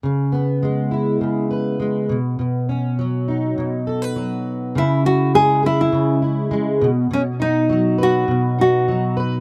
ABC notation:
X:1
M:4/4
L:1/16
Q:1/4=102
K:C#m
V:1 name="Nylon-string guitar"
z16 | z16 | E2 F2 G2 E E6- E z2 | C2 D4 F4 F4 z2 |]
V:2 name="Steel-string acoustic guitar" clef=bass
C,2 B,2 G,2 E2 C,2 B2 G,2 B,,2 | B,,2 C2 F,2 D2 B,,2 A B F,4 | C,2 E2 G,2 G2 C,2 E2 G,2 B,,2 | B,,2 D2 F,2 B2 B,,2 D2 F,2 B2 |]